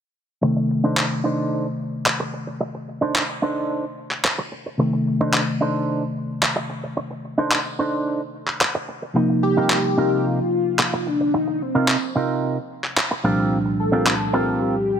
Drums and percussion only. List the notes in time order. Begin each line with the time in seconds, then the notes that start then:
0.97 clap
2.06 clap
3.15 clap
4.11 clap
4.24 clap
5.33 clap
6.43 clap
7.51 clap
8.47 clap
8.61 clap
9.70 clap
10.79 clap
11.88 clap
12.84 clap
12.97 clap
14.06 clap